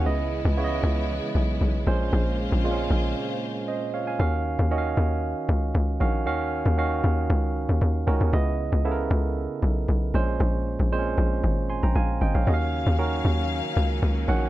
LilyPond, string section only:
\new Staff \with { instrumentName = "String section" } { \time 4/4 \key bes \phrygian \tempo 4 = 116 << { <fes ces' des' fes'>2.~ <fes ces' des' fes'>8 <des bes f' c''>8~ | <des bes f' c''>1 | r1 | r1 |
r1 | r1 | <des bes des' f''>1 | } \\ { aes1~ | aes1 | r1 | r1 |
r1 | r1 | ges1 | } >> }